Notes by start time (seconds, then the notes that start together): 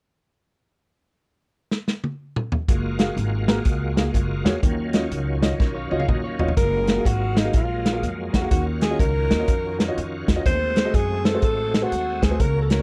1.71 snare
1.88 snare
2.04 high tom
2.36 mid tom
2.52 floor tom
2.68 F#1 G#3 A#3 F4 F#4, kick, closed hi-hat
2.99 A#3 F#4 G#4 F5, snare, closed hi-hat
3.17 G#1, closed hi-hat
3.48 A#3 F#4 G#4 A#4, snare, closed hi-hat
3.65 C#2, kick, closed hi-hat
3.96 A#3 F#4 G#4 F5, snare, closed hi-hat
4.14 F#1, kick, closed hi-hat
4.45 E2 A#3 F#4 G#4 C#5, snare, closed hi-hat
4.62 D#2 D#3 F#3 C#4 F4, kick, closed hi-hat
4.93 C#4 F4 F#4 D#5, snare, closed hi-hat
5.11 C#2, closed hi-hat
5.42 C#4 F4 F#4 D#5, snare, closed hi-hat
5.60 B1 C#4 A#4, kick, snare
5.75 F4 C#5
5.91 C#2 C#4 F4 F#4 D#5, high tom
5.99 G#4 F5, high tom
6.08 D#2 F#4 D#5, kick, mid tom
6.24 F4 C#5
6.39 G1 C#4 F4 F#4 D#5, floor tom
6.48 floor tom
6.57 F#1 F#3 G#3 A#3 F4 A#4, kick, closed hi-hat
6.87 G#4 F5, snare, closed hi-hat
6.97 A#3 F#4 G#4 F5
7.05 G#1 F#4, kick, closed hi-hat
7.36 D#4 G#4 F5, snare, closed hi-hat
7.44 A#3 F#4 G#4 F5
7.53 A#1 F4, kick, closed hi-hat
7.84 G#4 F5, snare, closed hi-hat
7.92 A#3 F#4 G#4 F5
8.02 F2, closed hi-hat
8.32 E2 F#4 G#4 A#4, kick, snare, closed hi-hat
8.42 A#3 F#4 G#4 F5
8.50 D#2 D#3 C#4 F4 F#4, kick, closed hi-hat
8.81 F#4 G#4 D#5, snare, closed hi-hat
8.90 C#4 F4 F#4 D#5
8.99 C#2 A#4, kick, closed hi-hat
9.30 D#2 F#4 D#5, snare, closed hi-hat
9.39 C#4 F4 F#4 D#5
9.48 F2, kick, closed hi-hat
9.78 F#4 A#4, snare, closed hi-hat
9.88 C#4 F4 F#4 D#5
9.97 F2, closed hi-hat
10.27 E2 F#4 D#5, kick, snare, closed hi-hat
10.35 C#4 F4 F#4 D#5
10.45 D#2 D#3 G#3 A3 C4 C5, kick, closed hi-hat
10.76 G#4 C5, snare, closed hi-hat
10.85 A3 F#4 G#4 D#5
10.94 F#2 G#4, kick, closed hi-hat
11.25 G#4 A4 C5, snare, closed hi-hat
11.34 A3 F#4 G#4 C5
11.42 A1 A4, kick, closed hi-hat
11.73 G#4 D#5, snare, closed hi-hat
11.82 A3 F#4 G#4 C5
11.92 D#2, closed hi-hat
12.22 D2 G#4 C5, kick, snare, closed hi-hat
12.30 A3 F#4 G#4 C5
12.40 C#2 C#3 A#3 C#4 A#4, kick, closed hi-hat
12.62 A4
12.70 F#4 A#4 C#5, snare, closed hi-hat